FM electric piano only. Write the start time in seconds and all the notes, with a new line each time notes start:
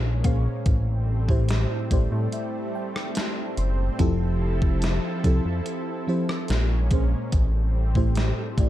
0.24 A#2 A#3 C#4 G#4 C5
1.28 A2 A3 E4 G4 C5
1.91 A2 A3 E4 G4 C5 D5
2.33 E5
2.75 G5
3.17 A5
3.58 C6
3.99 F3 C4 E4 G4 A4
5.24 F3 C4 E4 G4 A4
6.07 F3 C4 E4 G4 C5
6.91 A#2 A#3 C#4 G#4 C5
7.95 A2 A3 E4 G4 C5
8.58 A2 A3 E4 G4 D5